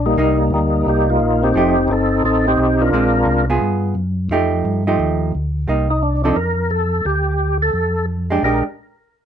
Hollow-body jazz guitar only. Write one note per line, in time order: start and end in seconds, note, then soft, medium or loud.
0.18 0.37 G3 medium
0.18 0.37 A#3 medium
0.18 0.38 D#4 medium
1.55 1.75 F3 medium
1.55 1.75 A3 medium
1.55 1.75 D#4 medium
1.55 1.76 G4 medium
2.93 3.44 G#3 medium
2.93 3.45 C4 medium
2.93 3.45 D4 medium
3.50 3.94 B3 medium
3.50 3.94 F4 medium
3.50 3.94 G#4 medium
4.31 4.82 F3 medium
4.31 4.82 A3 medium
4.31 4.82 D#4 medium
4.31 4.83 G4 medium
4.87 5.31 F3 medium
4.87 5.31 A3 medium
4.87 5.31 D#4 medium
4.87 5.32 G4 medium
5.68 5.87 G3 medium
5.68 5.87 A#3 medium
5.68 5.88 D#4 medium
6.25 6.35 F3 medium
6.25 6.36 C4 medium
6.25 6.36 D#4 medium
6.25 6.36 A4 medium
8.30 8.44 G#3 medium
8.30 8.44 D4 medium
8.30 8.44 G4 medium
8.45 8.63 G#3 medium
8.45 8.63 D4 medium
8.45 8.63 G4 medium